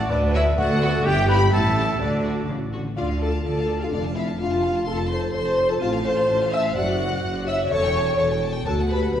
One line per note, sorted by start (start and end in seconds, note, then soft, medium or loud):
0.00 0.13 F#4 medium
0.00 0.10 F#5 loud
0.09 0.50 D2 medium
0.09 0.50 D2 loud
0.09 0.35 D4 loud
0.09 0.16 B4 medium
0.09 0.58 B4 loud
0.09 0.33 D5 loud
0.09 0.19 D5 medium
0.34 0.43 B3 medium
0.34 0.46 E4 loud
0.34 0.43 F#4 medium
0.34 0.42 F#4 medium
0.34 0.40 C#5 medium
0.34 0.43 E5 loud
0.34 0.57 E5 loud
0.57 0.97 D2 loud
0.57 0.97 D2 medium
0.57 0.98 D2 loud
0.57 1.08 F#4 loud
0.57 1.05 A4 loud
0.57 1.06 D5 loud
0.57 1.02 F#5 loud
0.57 1.05 F#5 loud
0.82 0.91 B3 medium
0.82 0.90 F#4 medium
0.82 0.91 F#4 medium
1.04 1.45 G1 loud
1.04 1.45 G2 loud
1.04 1.53 G4 loud
1.04 1.28 G4 loud
1.04 1.29 E5 loud
1.04 1.29 G5 loud
1.04 1.28 G5 loud
1.28 1.38 B3 medium
1.28 1.38 E4 medium
1.28 1.39 B4 loud
1.28 1.53 G5 loud
1.28 1.51 B5 loud
1.28 1.53 B5 loud
1.52 1.92 A1 medium
1.52 1.88 A1 medium
1.52 1.93 A2 medium
1.52 2.00 E4 medium
1.52 2.00 A4 loud
1.52 2.01 E5 loud
1.52 2.00 A5 loud
1.52 1.98 A5 loud
1.77 1.86 C#4 medium
1.77 1.86 G4 medium
1.77 1.85 G4 medium
2.00 2.41 D2 medium
2.00 2.41 D3 medium
2.00 2.48 D4 medium
2.00 2.73 F#4 medium
2.00 2.49 A4 medium
2.00 2.46 D5 medium
2.00 2.48 D5 medium
2.24 2.33 D4 medium
2.24 2.33 F#4 medium
2.48 2.89 A1 medium
2.48 2.57 C#3 medium
2.73 2.97 D3 soft
2.73 2.82 D4 medium
2.73 2.81 F#4 soft
2.73 2.81 F#4 medium
2.96 3.39 D2 medium
2.96 3.40 D3 medium
2.96 3.19 D4 medium
2.96 3.07 F4 medium
2.96 3.05 F4 medium
2.96 3.08 D5 medium
2.96 3.05 F5 medium
3.09 3.21 F5 soft
3.20 3.43 F4 medium
3.20 3.32 A4 medium
3.20 3.29 A4 medium
3.20 3.33 D5 medium
3.20 3.44 A5 medium
3.32 3.44 F5 soft
3.44 3.86 D2 medium
3.44 3.87 D2 medium
3.44 3.87 D3 medium
3.44 3.78 F4 medium
3.44 3.80 A4 medium
3.44 3.56 D5 soft
3.44 3.80 A5 medium
3.58 3.69 F5 soft
3.69 3.81 D5 soft
3.80 3.91 D4 medium
3.80 3.85 F4 medium
3.80 3.94 F4 medium
3.80 3.86 F5 medium
3.80 3.92 F5 medium
3.92 4.34 F1 medium
3.92 4.35 F2 medium
3.92 4.15 A3 medium
3.92 4.00 D4 medium
3.92 4.03 D4 medium
3.92 4.01 D5 medium
3.92 4.04 F5 medium
4.04 4.16 A5 medium
4.16 4.38 C4 medium
4.16 4.26 E4 medium
4.16 4.25 E4 medium
4.16 4.25 E5 medium
4.16 4.28 F5 medium
4.28 4.40 A5 soft
4.38 4.81 F1 medium
4.38 4.82 F1 medium
4.38 4.82 F2 medium
4.38 4.84 D4 medium
4.38 4.86 F4 medium
4.38 4.86 F5 medium
4.38 4.51 F5 soft
4.52 4.64 A5 soft
4.63 4.75 F5 medium
4.74 4.87 A5 medium
4.86 5.28 F1 medium
4.86 5.29 F1 medium
4.86 5.29 F2 medium
4.86 5.10 F4 medium
4.86 4.95 A4 medium
4.86 4.98 A4 medium
4.86 5.11 A5 medium
4.86 4.97 C6 medium
4.97 5.10 A5 medium
5.08 5.33 A4 medium
5.08 5.33 C5 medium
5.08 5.22 C5 medium
5.08 5.21 C6 medium
5.08 5.19 C6 medium
5.21 5.33 A5 medium
5.33 5.75 F1 medium
5.33 5.76 F1 medium
5.33 5.76 F2 medium
5.33 5.67 A4 medium
5.33 5.69 C5 medium
5.33 5.44 C6 soft
5.33 5.69 C6 medium
5.46 5.58 A5 soft
5.56 5.69 C6 medium
5.69 5.81 F4 medium
5.69 5.81 A4 medium
5.69 5.76 A4 medium
5.69 5.79 A5 medium
5.69 5.75 A5 medium
5.80 6.22 A1 medium
5.80 6.23 A1 medium
5.80 6.23 A2 medium
5.80 6.02 C4 medium
5.80 5.89 F4 medium
5.80 5.92 F4 medium
5.80 5.89 F5 medium
5.80 5.92 A5 medium
5.93 6.05 F5 medium
6.04 6.49 A4 medium
6.04 6.51 C5 medium
6.04 6.17 A5 medium
6.04 6.51 C6 medium
6.17 6.29 F5 medium
6.27 6.70 A1 medium
6.27 6.70 A2 medium
6.27 6.40 A5 medium
6.42 6.53 F5 medium
6.51 6.74 C5 medium
6.51 6.75 E5 medium
6.51 6.63 E5 loud
6.51 6.65 A5 medium
6.51 6.60 E6 medium
6.65 6.76 F5 medium
6.75 7.17 F#1 medium
6.75 7.18 F#1 medium
6.75 7.17 F#2 medium
6.75 7.46 F#4 medium
6.75 7.42 D5 medium
6.75 7.46 F#5 medium
6.75 6.87 F#5 medium
6.75 7.45 F#6 medium
6.87 6.99 D5 medium
7.00 7.12 F#5 medium
7.12 7.24 D5 medium
7.22 7.65 F#1 medium
7.22 7.59 F#1 medium
7.22 7.65 F#2 medium
7.22 7.35 F#5 medium
7.36 7.47 D5 medium
7.46 7.69 C#5 loud
7.46 7.70 E5 medium
7.46 7.58 E5 loud
7.46 7.59 F#5 medium
7.46 7.55 E6 medium
7.61 7.71 D5 medium
7.70 8.12 E1 medium
7.70 8.13 E1 medium
7.70 8.12 E2 medium
7.70 8.15 A4 loud
7.70 8.16 C#5 loud
7.70 7.83 A5 medium
7.70 8.17 C#6 loud
7.83 7.95 G5 medium
7.95 8.07 A5 medium
8.07 8.18 G5 medium
8.17 8.60 E1 medium
8.17 8.60 E2 medium
8.17 8.41 A4 medium
8.17 8.28 C#5 medium
8.17 8.25 C#5 medium
8.17 8.30 A5 medium
8.17 8.26 C#6 medium
8.32 8.43 G5 medium
8.43 8.54 A5 medium
8.55 8.66 G5 medium
8.65 9.07 D2 medium
8.65 9.08 D2 medium
8.65 8.89 F#4 medium
8.65 8.76 A4 loud
8.65 8.74 A4 medium
8.65 8.73 A5 medium
8.65 8.77 A5 medium
8.80 8.91 F#5 medium
8.89 9.12 G4 medium
8.89 9.12 B4 medium
8.89 9.00 B4 medium
8.89 9.02 A5 medium
8.89 9.12 B5 medium
9.04 9.14 F#5 soft
9.12 9.20 B1 medium
9.12 9.20 B2 medium
9.12 9.20 G4 medium
9.12 9.20 B4 medium
9.12 9.20 B5 medium
9.12 9.20 B5 soft